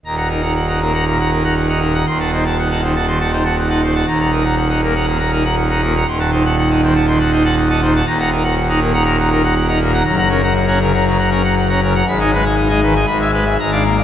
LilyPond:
<<
  \new Staff \with { instrumentName = "Pipe organ" } { \time 4/4 \key ees \minor \tempo 4 = 120 bes''16 <ges'' bes''>16 bes'16 <ges'' bes''>16 ges''16 <ges'' bes''>16 bes'16 <ges'' bes''>16 bes''16 <ges'' bes''>16 bes'16 <ges'' bes''>16 ges''16 <ges'' bes''>16 bes'16 <ges'' bes''>16 | c'''16 <ges'' a''>16 c''16 <ges'' a''>16 ges''16 <ges'' a''>16 c''16 <ges'' a''>16 c'''16 <ges'' a''>16 c''16 <ges'' a''>16 ges''16 <ges'' a''>16 c''16 <ges'' a''>16 | bes''16 <ges'' bes''>16 bes'16 <ges'' bes''>16 ges''16 <ges'' bes''>16 bes'16 <ges'' bes''>16 bes''16 <ges'' bes''>16 bes'16 <ges'' bes''>16 ges''16 <ges'' bes''>16 bes'16 <ges'' bes''>16 | c'''16 <ges'' a''>16 c''16 <ges'' a''>16 ges''16 <ges'' a''>16 c''16 <ges'' a''>16 c'''16 <ges'' a''>16 c''16 <ges'' a''>16 ges''16 <ges'' a''>16 c''16 <ges'' a''>16 |
bes''16 <ges'' bes''>16 bes'16 <ges'' bes''>16 ges''16 <ges'' bes''>16 bes'16 <ges'' bes''>16 bes''16 <ges'' bes''>16 bes'16 <ges'' bes''>16 ges''16 <ges'' bes''>16 bes'16 <ges'' bes''>16 | bes''16 <ges'' bes''>16 bes'16 <ges'' bes''>16 ges''16 <ges'' bes''>16 bes'16 <ges'' bes''>16 bes''16 <ges'' bes''>16 bes'16 <ges'' bes''>16 ges''16 <ges'' bes''>16 bes'16 <ges'' bes''>16 | ces'''16 <ees'' aes''>16 ces''16 <ees'' aes''>16 ees''16 <ees'' aes''>16 ces''16 <ees'' aes''>16 b''16 <e'' gis''>16 b'16 <e'' gis''>16 bes''16 <d'' f''>16 bes'16 <d'' f''>16 | }
  \new Staff \with { instrumentName = "Pipe organ" } { \clef bass \time 4/4 \key ees \minor << { ees,8 ees'16 r8 ees'16 bes,16 r16 bes,16 r16 ees'16 r8 ees'16 bes,16 r16 | ees,8 ees'16 r8 ees'16 ees16 r16 ees16 r16 ees'16 r8 ees'16 ees16 r16 | ees,8 ees'16 r8 ees'16 bes,16 r16 bes,16 r16 ees'16 r8 ees'16 bes,16 r16 | ees,8 ees'16 r8 ees'16 ees16 r16 ees16 r16 ees'16 r8 ees'16 ees16 r16 |
ees,8 ees'16 r8 ees'16 bes,16 r16 bes,16 r16 ees'16 r8 ees'16 bes,16 r16 | ges,8 des'16 r8 des'16 des16 r16 des16 r16 des'16 r8 des'16 des16 r16 | aes,16 ees'16 aes16 r16 ees'16 aes16 ees16 r16 gis,8 gis16 r16 aes,16 d'16 bes16 r16 | } \\ { ees,,1 | ees,,1 | ees,,1 | ees,,1 |
ees,,1 | ges,,1 | aes,,2 gis,,4 aes,,4 | } >> }
>>